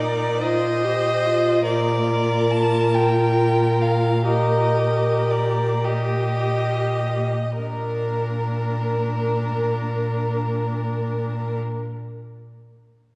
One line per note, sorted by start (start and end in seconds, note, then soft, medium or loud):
0.00 1.63 A#2 soft
0.00 0.42 D#4 soft
0.00 0.38 A#4 soft
0.00 0.43 D5 medium
0.41 0.86 F4 soft
0.41 1.64 C5 soft
0.41 1.65 D#5 medium
0.84 1.27 G4 soft
1.26 1.66 F4 soft
1.65 7.29 A#2 soft
1.65 4.24 F4 soft
1.65 4.24 A#4 medium
1.65 2.53 D5 medium
2.51 2.96 A5 medium
2.94 3.83 G5 medium
3.81 4.26 F5 soft
4.26 5.81 G4 soft
4.26 5.85 A#4 soft
4.26 5.32 D#5 soft
5.31 5.85 D5 soft
5.83 7.29 G4 soft
5.83 7.33 G4 soft
5.83 7.58 D#5 soft
7.59 11.60 A#2 soft
7.59 11.59 D4 soft
7.59 11.59 A#4 soft